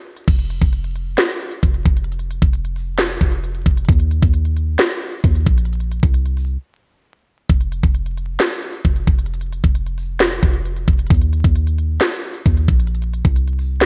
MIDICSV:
0, 0, Header, 1, 3, 480
1, 0, Start_track
1, 0, Tempo, 451128
1, 295, Time_signature, 4, 2, 24, 8
1, 14745, End_track
2, 0, Start_track
2, 0, Title_t, "808-style bass"
2, 0, Program_c, 0, 38
2, 295, Note_on_c, 0, 29, 108
2, 641, Note_off_c, 0, 29, 0
2, 655, Note_on_c, 0, 29, 104
2, 1231, Note_off_c, 0, 29, 0
2, 1734, Note_on_c, 0, 29, 113
2, 1965, Note_off_c, 0, 29, 0
2, 1974, Note_on_c, 0, 29, 106
2, 2551, Note_off_c, 0, 29, 0
2, 2575, Note_on_c, 0, 29, 107
2, 3381, Note_off_c, 0, 29, 0
2, 3415, Note_on_c, 0, 29, 105
2, 3876, Note_off_c, 0, 29, 0
2, 3895, Note_on_c, 0, 29, 105
2, 4125, Note_off_c, 0, 29, 0
2, 4135, Note_on_c, 0, 39, 114
2, 4481, Note_off_c, 0, 39, 0
2, 4495, Note_on_c, 0, 39, 102
2, 5071, Note_off_c, 0, 39, 0
2, 5575, Note_on_c, 0, 39, 113
2, 5805, Note_off_c, 0, 39, 0
2, 5815, Note_on_c, 0, 34, 105
2, 6391, Note_off_c, 0, 34, 0
2, 6415, Note_on_c, 0, 36, 105
2, 6991, Note_off_c, 0, 36, 0
2, 7975, Note_on_c, 0, 29, 108
2, 8321, Note_off_c, 0, 29, 0
2, 8335, Note_on_c, 0, 29, 105
2, 8911, Note_off_c, 0, 29, 0
2, 9415, Note_on_c, 0, 29, 113
2, 9645, Note_off_c, 0, 29, 0
2, 9655, Note_on_c, 0, 29, 104
2, 10231, Note_off_c, 0, 29, 0
2, 10255, Note_on_c, 0, 29, 103
2, 11061, Note_off_c, 0, 29, 0
2, 11095, Note_on_c, 0, 29, 111
2, 11556, Note_off_c, 0, 29, 0
2, 11575, Note_on_c, 0, 29, 106
2, 11805, Note_off_c, 0, 29, 0
2, 11815, Note_on_c, 0, 39, 110
2, 12160, Note_off_c, 0, 39, 0
2, 12175, Note_on_c, 0, 39, 102
2, 12751, Note_off_c, 0, 39, 0
2, 13255, Note_on_c, 0, 39, 114
2, 13486, Note_off_c, 0, 39, 0
2, 13496, Note_on_c, 0, 34, 105
2, 14072, Note_off_c, 0, 34, 0
2, 14095, Note_on_c, 0, 36, 101
2, 14745, Note_off_c, 0, 36, 0
2, 14745, End_track
3, 0, Start_track
3, 0, Title_t, "Drums"
3, 177, Note_on_c, 9, 42, 75
3, 283, Note_off_c, 9, 42, 0
3, 295, Note_on_c, 9, 36, 127
3, 295, Note_on_c, 9, 42, 78
3, 295, Note_on_c, 9, 49, 109
3, 402, Note_off_c, 9, 36, 0
3, 402, Note_off_c, 9, 42, 0
3, 402, Note_off_c, 9, 49, 0
3, 413, Note_on_c, 9, 42, 66
3, 520, Note_off_c, 9, 42, 0
3, 534, Note_on_c, 9, 42, 80
3, 640, Note_off_c, 9, 42, 0
3, 654, Note_on_c, 9, 36, 102
3, 654, Note_on_c, 9, 42, 64
3, 761, Note_off_c, 9, 36, 0
3, 761, Note_off_c, 9, 42, 0
3, 774, Note_on_c, 9, 42, 89
3, 880, Note_off_c, 9, 42, 0
3, 896, Note_on_c, 9, 42, 60
3, 1002, Note_off_c, 9, 42, 0
3, 1016, Note_on_c, 9, 42, 69
3, 1123, Note_off_c, 9, 42, 0
3, 1251, Note_on_c, 9, 42, 80
3, 1254, Note_on_c, 9, 38, 124
3, 1357, Note_off_c, 9, 42, 0
3, 1361, Note_off_c, 9, 38, 0
3, 1373, Note_on_c, 9, 42, 65
3, 1479, Note_off_c, 9, 42, 0
3, 1494, Note_on_c, 9, 42, 90
3, 1601, Note_off_c, 9, 42, 0
3, 1611, Note_on_c, 9, 42, 60
3, 1717, Note_off_c, 9, 42, 0
3, 1734, Note_on_c, 9, 36, 87
3, 1737, Note_on_c, 9, 42, 71
3, 1840, Note_off_c, 9, 36, 0
3, 1844, Note_off_c, 9, 42, 0
3, 1854, Note_on_c, 9, 42, 56
3, 1961, Note_off_c, 9, 42, 0
3, 1974, Note_on_c, 9, 36, 102
3, 2081, Note_off_c, 9, 36, 0
3, 2094, Note_on_c, 9, 42, 76
3, 2174, Note_off_c, 9, 42, 0
3, 2174, Note_on_c, 9, 42, 63
3, 2255, Note_off_c, 9, 42, 0
3, 2255, Note_on_c, 9, 42, 48
3, 2333, Note_off_c, 9, 42, 0
3, 2333, Note_on_c, 9, 42, 63
3, 2439, Note_off_c, 9, 42, 0
3, 2454, Note_on_c, 9, 42, 81
3, 2560, Note_off_c, 9, 42, 0
3, 2575, Note_on_c, 9, 36, 100
3, 2575, Note_on_c, 9, 42, 61
3, 2681, Note_off_c, 9, 36, 0
3, 2681, Note_off_c, 9, 42, 0
3, 2694, Note_on_c, 9, 42, 89
3, 2801, Note_off_c, 9, 42, 0
3, 2817, Note_on_c, 9, 42, 62
3, 2923, Note_off_c, 9, 42, 0
3, 2937, Note_on_c, 9, 46, 74
3, 3043, Note_off_c, 9, 46, 0
3, 3172, Note_on_c, 9, 42, 81
3, 3176, Note_on_c, 9, 38, 120
3, 3278, Note_off_c, 9, 42, 0
3, 3282, Note_off_c, 9, 38, 0
3, 3293, Note_on_c, 9, 42, 65
3, 3400, Note_off_c, 9, 42, 0
3, 3415, Note_on_c, 9, 36, 97
3, 3415, Note_on_c, 9, 42, 89
3, 3522, Note_off_c, 9, 36, 0
3, 3522, Note_off_c, 9, 42, 0
3, 3531, Note_on_c, 9, 42, 58
3, 3638, Note_off_c, 9, 42, 0
3, 3657, Note_on_c, 9, 42, 70
3, 3764, Note_off_c, 9, 42, 0
3, 3774, Note_on_c, 9, 42, 58
3, 3881, Note_off_c, 9, 42, 0
3, 3895, Note_on_c, 9, 36, 102
3, 4001, Note_off_c, 9, 36, 0
3, 4015, Note_on_c, 9, 42, 77
3, 4095, Note_off_c, 9, 42, 0
3, 4095, Note_on_c, 9, 42, 62
3, 4135, Note_on_c, 9, 36, 127
3, 4175, Note_off_c, 9, 42, 0
3, 4175, Note_on_c, 9, 42, 48
3, 4241, Note_off_c, 9, 36, 0
3, 4253, Note_off_c, 9, 42, 0
3, 4253, Note_on_c, 9, 42, 65
3, 4360, Note_off_c, 9, 42, 0
3, 4374, Note_on_c, 9, 42, 85
3, 4481, Note_off_c, 9, 42, 0
3, 4495, Note_on_c, 9, 36, 101
3, 4495, Note_on_c, 9, 42, 61
3, 4601, Note_off_c, 9, 36, 0
3, 4601, Note_off_c, 9, 42, 0
3, 4614, Note_on_c, 9, 42, 90
3, 4720, Note_off_c, 9, 42, 0
3, 4736, Note_on_c, 9, 42, 60
3, 4842, Note_off_c, 9, 42, 0
3, 4857, Note_on_c, 9, 42, 65
3, 4964, Note_off_c, 9, 42, 0
3, 5092, Note_on_c, 9, 42, 78
3, 5096, Note_on_c, 9, 38, 119
3, 5198, Note_off_c, 9, 42, 0
3, 5202, Note_off_c, 9, 38, 0
3, 5214, Note_on_c, 9, 42, 67
3, 5320, Note_off_c, 9, 42, 0
3, 5336, Note_on_c, 9, 42, 89
3, 5442, Note_off_c, 9, 42, 0
3, 5452, Note_on_c, 9, 42, 58
3, 5558, Note_off_c, 9, 42, 0
3, 5575, Note_on_c, 9, 36, 83
3, 5578, Note_on_c, 9, 42, 69
3, 5681, Note_off_c, 9, 36, 0
3, 5684, Note_off_c, 9, 42, 0
3, 5696, Note_on_c, 9, 42, 59
3, 5802, Note_off_c, 9, 42, 0
3, 5815, Note_on_c, 9, 36, 99
3, 5922, Note_off_c, 9, 36, 0
3, 5935, Note_on_c, 9, 42, 80
3, 6015, Note_off_c, 9, 42, 0
3, 6015, Note_on_c, 9, 42, 63
3, 6095, Note_off_c, 9, 42, 0
3, 6095, Note_on_c, 9, 42, 46
3, 6174, Note_off_c, 9, 42, 0
3, 6174, Note_on_c, 9, 42, 62
3, 6280, Note_off_c, 9, 42, 0
3, 6294, Note_on_c, 9, 42, 81
3, 6400, Note_off_c, 9, 42, 0
3, 6415, Note_on_c, 9, 36, 97
3, 6415, Note_on_c, 9, 42, 61
3, 6521, Note_off_c, 9, 36, 0
3, 6521, Note_off_c, 9, 42, 0
3, 6534, Note_on_c, 9, 42, 88
3, 6640, Note_off_c, 9, 42, 0
3, 6656, Note_on_c, 9, 42, 59
3, 6762, Note_off_c, 9, 42, 0
3, 6777, Note_on_c, 9, 46, 72
3, 6884, Note_off_c, 9, 46, 0
3, 7975, Note_on_c, 9, 36, 126
3, 7975, Note_on_c, 9, 42, 79
3, 8082, Note_off_c, 9, 36, 0
3, 8082, Note_off_c, 9, 42, 0
3, 8094, Note_on_c, 9, 42, 64
3, 8201, Note_off_c, 9, 42, 0
3, 8214, Note_on_c, 9, 42, 82
3, 8321, Note_off_c, 9, 42, 0
3, 8335, Note_on_c, 9, 36, 100
3, 8335, Note_on_c, 9, 42, 61
3, 8441, Note_off_c, 9, 36, 0
3, 8441, Note_off_c, 9, 42, 0
3, 8454, Note_on_c, 9, 42, 90
3, 8560, Note_off_c, 9, 42, 0
3, 8576, Note_on_c, 9, 42, 62
3, 8683, Note_off_c, 9, 42, 0
3, 8697, Note_on_c, 9, 42, 66
3, 8803, Note_off_c, 9, 42, 0
3, 8931, Note_on_c, 9, 42, 79
3, 8935, Note_on_c, 9, 38, 122
3, 9038, Note_off_c, 9, 42, 0
3, 9041, Note_off_c, 9, 38, 0
3, 9053, Note_on_c, 9, 42, 67
3, 9160, Note_off_c, 9, 42, 0
3, 9175, Note_on_c, 9, 42, 90
3, 9281, Note_off_c, 9, 42, 0
3, 9291, Note_on_c, 9, 42, 60
3, 9398, Note_off_c, 9, 42, 0
3, 9414, Note_on_c, 9, 36, 85
3, 9418, Note_on_c, 9, 42, 73
3, 9521, Note_off_c, 9, 36, 0
3, 9524, Note_off_c, 9, 42, 0
3, 9535, Note_on_c, 9, 42, 59
3, 9641, Note_off_c, 9, 42, 0
3, 9655, Note_on_c, 9, 36, 105
3, 9761, Note_off_c, 9, 36, 0
3, 9775, Note_on_c, 9, 42, 77
3, 9854, Note_off_c, 9, 42, 0
3, 9854, Note_on_c, 9, 42, 64
3, 9935, Note_off_c, 9, 42, 0
3, 9935, Note_on_c, 9, 42, 47
3, 10013, Note_off_c, 9, 42, 0
3, 10013, Note_on_c, 9, 42, 63
3, 10120, Note_off_c, 9, 42, 0
3, 10134, Note_on_c, 9, 42, 81
3, 10241, Note_off_c, 9, 42, 0
3, 10255, Note_on_c, 9, 36, 99
3, 10255, Note_on_c, 9, 42, 62
3, 10361, Note_off_c, 9, 36, 0
3, 10361, Note_off_c, 9, 42, 0
3, 10374, Note_on_c, 9, 42, 89
3, 10480, Note_off_c, 9, 42, 0
3, 10495, Note_on_c, 9, 42, 60
3, 10602, Note_off_c, 9, 42, 0
3, 10616, Note_on_c, 9, 46, 73
3, 10723, Note_off_c, 9, 46, 0
3, 10851, Note_on_c, 9, 42, 78
3, 10854, Note_on_c, 9, 38, 121
3, 10957, Note_off_c, 9, 42, 0
3, 10961, Note_off_c, 9, 38, 0
3, 10972, Note_on_c, 9, 42, 67
3, 11079, Note_off_c, 9, 42, 0
3, 11094, Note_on_c, 9, 42, 86
3, 11095, Note_on_c, 9, 36, 96
3, 11200, Note_off_c, 9, 42, 0
3, 11201, Note_off_c, 9, 36, 0
3, 11210, Note_on_c, 9, 42, 60
3, 11317, Note_off_c, 9, 42, 0
3, 11337, Note_on_c, 9, 42, 69
3, 11443, Note_off_c, 9, 42, 0
3, 11454, Note_on_c, 9, 42, 60
3, 11561, Note_off_c, 9, 42, 0
3, 11575, Note_on_c, 9, 36, 100
3, 11681, Note_off_c, 9, 36, 0
3, 11695, Note_on_c, 9, 42, 77
3, 11775, Note_off_c, 9, 42, 0
3, 11775, Note_on_c, 9, 42, 63
3, 11815, Note_on_c, 9, 36, 127
3, 11855, Note_off_c, 9, 42, 0
3, 11855, Note_on_c, 9, 42, 46
3, 11921, Note_off_c, 9, 36, 0
3, 11933, Note_off_c, 9, 42, 0
3, 11933, Note_on_c, 9, 42, 65
3, 12040, Note_off_c, 9, 42, 0
3, 12054, Note_on_c, 9, 42, 82
3, 12161, Note_off_c, 9, 42, 0
3, 12175, Note_on_c, 9, 36, 99
3, 12175, Note_on_c, 9, 42, 61
3, 12281, Note_off_c, 9, 36, 0
3, 12282, Note_off_c, 9, 42, 0
3, 12295, Note_on_c, 9, 42, 90
3, 12401, Note_off_c, 9, 42, 0
3, 12417, Note_on_c, 9, 42, 61
3, 12523, Note_off_c, 9, 42, 0
3, 12537, Note_on_c, 9, 42, 68
3, 12644, Note_off_c, 9, 42, 0
3, 12771, Note_on_c, 9, 42, 75
3, 12775, Note_on_c, 9, 38, 116
3, 12878, Note_off_c, 9, 42, 0
3, 12881, Note_off_c, 9, 38, 0
3, 12894, Note_on_c, 9, 42, 65
3, 13000, Note_off_c, 9, 42, 0
3, 13016, Note_on_c, 9, 42, 88
3, 13123, Note_off_c, 9, 42, 0
3, 13132, Note_on_c, 9, 42, 60
3, 13238, Note_off_c, 9, 42, 0
3, 13255, Note_on_c, 9, 36, 86
3, 13259, Note_on_c, 9, 42, 71
3, 13361, Note_off_c, 9, 36, 0
3, 13365, Note_off_c, 9, 42, 0
3, 13377, Note_on_c, 9, 42, 58
3, 13483, Note_off_c, 9, 42, 0
3, 13496, Note_on_c, 9, 36, 101
3, 13602, Note_off_c, 9, 36, 0
3, 13616, Note_on_c, 9, 42, 78
3, 13696, Note_off_c, 9, 42, 0
3, 13696, Note_on_c, 9, 42, 63
3, 13776, Note_off_c, 9, 42, 0
3, 13776, Note_on_c, 9, 42, 46
3, 13854, Note_off_c, 9, 42, 0
3, 13854, Note_on_c, 9, 42, 62
3, 13961, Note_off_c, 9, 42, 0
3, 13976, Note_on_c, 9, 42, 81
3, 14082, Note_off_c, 9, 42, 0
3, 14095, Note_on_c, 9, 36, 98
3, 14096, Note_on_c, 9, 42, 62
3, 14202, Note_off_c, 9, 36, 0
3, 14202, Note_off_c, 9, 42, 0
3, 14215, Note_on_c, 9, 42, 92
3, 14322, Note_off_c, 9, 42, 0
3, 14338, Note_on_c, 9, 42, 61
3, 14444, Note_off_c, 9, 42, 0
3, 14458, Note_on_c, 9, 46, 74
3, 14565, Note_off_c, 9, 46, 0
3, 14693, Note_on_c, 9, 42, 76
3, 14696, Note_on_c, 9, 38, 118
3, 14745, Note_off_c, 9, 38, 0
3, 14745, Note_off_c, 9, 42, 0
3, 14745, End_track
0, 0, End_of_file